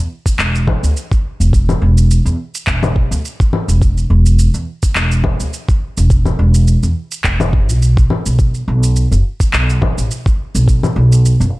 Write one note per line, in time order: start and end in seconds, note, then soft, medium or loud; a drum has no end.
0.26 kick medium
0.26 shaker medium
0.39 0.75 E1 medium
0.39 clap medium
0.39 shaker medium
0.55 shaker soft
0.67 kick loud
0.67 low conga medium
0.83 0.92 D2 medium
0.83 shaker medium
0.97 shaker medium
1.11 kick medium
1.11 shaker soft
1.40 1.75 E1 medium
1.40 shaker medium
1.53 kick loud
1.53 shaker medium
1.69 low conga medium
1.69 shaker soft
1.82 2.18 E1 medium
1.98 shaker medium
2.11 shaker medium
2.25 2.35 E2 medium
2.25 shaker soft
2.55 shaker medium
2.67 3.04 E1 medium
2.67 kick medium
2.67 clap medium
2.67 shaker medium
2.83 low conga medium
2.83 shaker soft
2.96 kick loud
3.11 3.20 D2 medium
3.11 shaker medium
3.25 shaker medium
3.40 kick loud
3.40 shaker soft
3.53 low conga medium
3.68 4.04 E1 medium
3.68 shaker medium
3.82 kick loud
3.82 shaker medium
3.97 shaker soft
4.10 4.47 E1 loud
4.26 shaker medium
4.39 shaker medium
4.54 4.63 E2 medium
4.54 shaker soft
4.83 kick medium
4.83 shaker medium
4.95 5.32 E1 medium
4.95 clap medium
4.95 shaker medium
5.12 shaker soft
5.24 kick loud
5.24 low conga medium
5.40 5.49 D2 medium
5.40 shaker medium
5.53 shaker medium
5.69 kick loud
5.69 shaker soft
5.97 6.33 E1 medium
5.97 shaker medium
6.10 kick loud
6.10 shaker medium
6.25 low conga medium
6.25 shaker soft
6.39 6.75 E1 loud
6.54 shaker medium
6.68 shaker medium
6.83 6.92 E2 medium
6.83 shaker soft
7.12 shaker medium
7.24 7.69 E1 medium
7.24 kick medium
7.24 clap medium
7.24 shaker medium
7.40 low conga medium
7.40 shaker soft
7.53 kick loud
7.69 8.04 B1 medium
7.69 shaker medium
7.82 shaker medium
7.97 kick loud
7.97 shaker soft
8.10 low conga medium
8.26 8.61 B1 medium
8.26 shaker medium
8.39 kick loud
8.39 shaker medium
8.54 shaker soft
8.68 9.04 B1 loud
8.83 shaker medium
8.96 shaker medium
9.11 9.21 F#1 medium
9.11 shaker soft
9.40 kick medium
9.40 shaker medium
9.53 9.90 B1 medium
9.53 clap medium
9.53 shaker soft
9.70 shaker soft
9.82 kick loud
9.82 low conga medium
9.98 10.06 A1 medium
9.98 shaker medium
10.11 shaker medium
10.26 kick loud
10.26 shaker soft
10.55 10.90 B1 medium
10.55 shaker medium
10.68 kick loud
10.68 shaker medium
10.83 low conga medium
10.83 shaker soft
10.96 11.32 B1 loud
11.12 shaker medium
11.26 shaker medium
11.40 11.49 F#1 medium
11.40 shaker soft